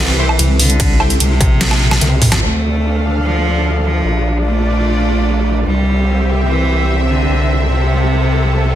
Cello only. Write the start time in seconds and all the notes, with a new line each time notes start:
0.00 E3
0.59 D3
1.20 C3
2.42 A3
3.23 F3
3.84 F3
4.45 A3
5.66 G3
6.47 E3
7.08 D3
7.69 C3